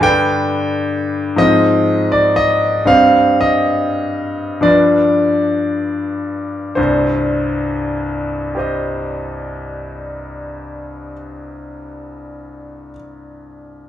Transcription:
0.01 1.34 G2 medium
0.01 1.35 D3 medium
0.01 1.35 D4 medium
0.01 1.36 B4 soft
0.01 1.39 G5 loud
1.36 2.83 G#2 medium
1.36 2.83 F3 soft
1.36 2.84 C4 soft
1.36 2.84 C5 soft
1.36 2.12 D#5 medium
2.12 2.37 D5 medium
2.36 2.88 D#5 medium
2.85 4.58 G2 medium
2.85 4.58 G3 soft
2.85 4.59 C4 soft
2.85 4.59 C5 soft
2.85 3.42 F5 medium
3.41 4.63 D#5 medium
4.61 6.71 G2 soft
4.61 6.72 F3 soft
4.61 6.72 D4 soft
4.61 6.72 B4 soft
4.61 6.76 D5 medium
6.75 11.13 C2 medium
6.75 11.13 G2 soft
6.75 8.55 C5 medium
8.55 12.91 G4 soft
8.55 12.93 C5 soft
8.59 12.95 D#5 soft

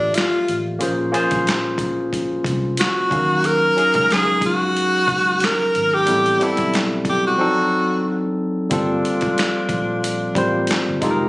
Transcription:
0.00 0.10 A1 medium
0.00 0.79 A#3 medium
0.00 0.17 D4 medium
0.00 0.81 F4 medium
0.00 0.82 G4 medium
0.00 0.82 A4 medium
0.00 0.82 E5 medium
0.14 0.65 F4 medium
0.14 snare loud
0.14 closed hi-hat medium
0.19 clap medium
0.48 0.77 A1 medium
0.48 closed hi-hat medium
0.79 1.10 A#1 loud
0.79 1.07 A#3 medium
0.79 1.08 C#4 medium
0.79 1.08 F4 medium
0.79 1.08 G#4 medium
0.79 1.09 C5 medium
0.79 closed hi-hat medium
1.12 2.22 A#3 medium
1.12 2.22 C#4 medium
1.12 2.22 F4 medium
1.12 2.23 G#4 medium
1.12 2.23 C5 medium
1.12 closed hi-hat medium
1.31 2.42 A#1 medium
1.31 kick medium
1.31 closed hi-hat soft
1.47 snare loud
1.47 clap medium
1.47 closed hi-hat medium
1.78 kick loud
1.78 closed hi-hat medium
2.13 kick medium
2.13 closed hi-hat medium
2.44 2.74 C2 medium
2.44 kick medium
2.44 closed hi-hat medium
2.77 3.48 F#4 loud
2.77 snare loud
2.77 closed hi-hat medium
2.82 clap medium
3.10 3.69 D#2 medium
3.10 3.65 F#3 medium
3.10 3.66 C#4 medium
3.10 3.66 D#4 medium
3.10 3.67 A#4 medium
3.10 3.67 F5 medium
3.10 kick loud
3.10 closed hi-hat medium
3.44 4.14 A#4 loud
3.44 closed hi-hat medium
3.76 4.85 F#3 medium
3.76 4.86 C#4 medium
3.76 4.86 D#4 medium
3.76 4.87 G#4 medium
3.76 4.87 F5 medium
3.76 closed hi-hat medium
3.94 5.06 C#2 medium
3.94 kick loud
3.94 closed hi-hat soft
4.11 4.44 G#4 loud
4.11 snare loud
4.11 clap medium
4.11 closed hi-hat medium
4.41 kick loud
4.41 closed hi-hat medium
4.46 5.46 F#4 loud
4.77 closed hi-hat medium
5.08 5.38 C#2 medium
5.08 kick medium
5.08 closed hi-hat medium
5.40 snare loud
5.40 closed hi-hat medium
5.45 5.96 A#4 loud
5.45 clap medium
5.75 6.04 G#1 medium
5.75 closed hi-hat medium
5.94 6.45 G4 medium
6.06 6.37 A1 loud
6.06 6.34 G3 medium
6.06 6.35 B3 medium
6.06 6.35 C4 medium
6.06 6.36 E4 medium
6.06 6.36 A4 medium
6.06 closed hi-hat medium
6.26 closed hi-hat soft
6.39 7.39 G3 medium
6.39 7.39 B3 medium
6.39 7.37 C4 medium
6.39 7.40 E4 medium
6.39 7.40 A4 medium
6.39 closed hi-hat medium
6.44 6.81 E4 medium
6.57 7.36 B1 medium
6.57 kick loud
6.57 closed hi-hat soft
6.74 snare loud
6.74 clap medium
6.74 closed hi-hat medium
7.05 kick loud
7.05 closed hi-hat medium
7.09 7.24 G4 medium
7.27 8.20 F#4 medium
7.38 7.45 F3 medium
7.38 8.48 C4 medium
7.38 8.48 D4 medium
7.38 8.49 D#4 medium
7.38 8.49 A4 medium
7.44 8.51 F#3 medium
8.70 9.00 G1 loud
8.70 9.80 G3 medium
8.70 9.80 A#3 medium
8.70 9.80 C4 medium
8.70 10.65 C4 medium
8.70 10.65 D4 medium
8.70 10.65 F4 medium
8.70 9.81 F4 medium
8.70 9.81 A4 medium
8.70 kick loud
8.70 closed hi-hat medium
9.05 closed hi-hat medium
9.21 kick medium
9.21 closed hi-hat soft
9.38 snare loud
9.38 clap medium
9.38 closed hi-hat medium
9.69 10.28 A#1 medium
9.69 kick loud
9.69 closed hi-hat medium
10.04 closed hi-hat medium
10.35 10.65 A1 medium
10.35 11.02 G3 medium
10.35 11.02 A#3 medium
10.35 11.02 C4 medium
10.35 11.02 F4 medium
10.35 11.03 C5 medium
10.35 kick medium
10.35 closed hi-hat medium
10.67 snare loud
10.67 closed hi-hat medium
10.72 clap medium
10.88 11.01 G1 loud
11.01 11.29 F1 medium
11.01 11.29 G#3 medium
11.01 11.29 C4 medium
11.01 11.29 D#4 medium
11.01 11.29 F4 medium
11.01 11.29 G4 medium
11.01 11.10 A4 medium
11.01 kick loud
11.01 closed hi-hat medium
11.11 11.29 A#4 medium

